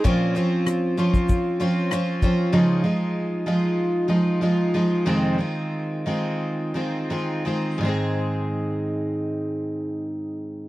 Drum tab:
SH |x-x-x-xxx-x-x-x-|----------------|----------------|----------------|
SD |----r-------r---|----------------|----------------|----------------|
BD |o------oo-----o-|----------------|----------------|----------------|